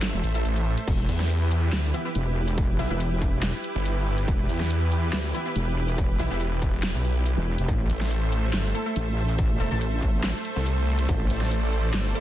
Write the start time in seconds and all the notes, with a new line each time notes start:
Already playing: G1 A3 A4 C5 E5
0.02 snare, clap, closed hi-hat
0.14 E1
0.24 A1, closed hi-hat
0.35 A3 E4 A4, closed hi-hat
0.45 A1, closed hi-hat
0.56 closed hi-hat
0.78 closed hi-hat
0.88 E1 E4 G4 B4, kick, closed hi-hat, crash
1.09 E2, closed hi-hat
1.20 snare
1.30 closed hi-hat
1.51 closed hi-hat
1.73 D2, snare, clap, closed hi-hat
1.94 E3 B3 E4, closed hi-hat
2.05 E3 B3 E4
2.15 E1, closed hi-hat
2.48 closed hi-hat
2.58 kick, closed hi-hat
2.79 B1 E3 B3 E4, closed hi-hat
2.90 E1 E3 B3 E4
3.00 closed hi-hat
3.22 kick, closed hi-hat
3.43 snare, clap, closed hi-hat
3.64 closed hi-hat
3.75 G1
3.85 closed hi-hat
4.18 closed hi-hat
4.28 E1, kick, closed hi-hat
4.49 E2, closed hi-hat
4.61 snare
4.71 closed hi-hat
4.92 closed hi-hat
5.13 D2, snare, clap, closed hi-hat
5.34 E3 B3 E4, closed hi-hat
5.46 E3 B3 E4
5.56 E1, closed hi-hat
5.88 closed hi-hat
5.98 kick, closed hi-hat
6.19 B1 E3 B3 E4, closed hi-hat
6.31 E1 E3 B3 E4
6.41 closed hi-hat
6.62 kick, closed hi-hat
6.83 snare, clap, closed hi-hat
6.95 B1
7.05 closed hi-hat
7.26 closed hi-hat
7.37 E1
7.58 E1, closed hi-hat
7.68 A1 A3 A4 C5 E5, kick, closed hi-hat
7.90 A1, closed hi-hat
8.01 snare
8.11 closed hi-hat
8.32 closed hi-hat
8.53 G1, snare, clap, closed hi-hat
8.75 A3 E4 A4, closed hi-hat
8.86 A3 E4 A4
8.96 A1, closed hi-hat
9.29 closed hi-hat
9.39 kick, closed hi-hat
9.60 E1 A3 E4 A4, closed hi-hat
9.71 A1 A3 E4 A4
9.81 closed hi-hat
10.02 kick, closed hi-hat
10.24 snare, clap, closed hi-hat
10.45 closed hi-hat
10.56 C2
10.66 closed hi-hat
10.99 closed hi-hat
11.09 A1 D5, kick, closed hi-hat
11.30 A1, closed hi-hat
11.41 snare
11.51 closed hi-hat
11.73 closed hi-hat
11.94 G1, snare, clap, closed hi-hat
12.15 A3 E4 A4, closed hi-hat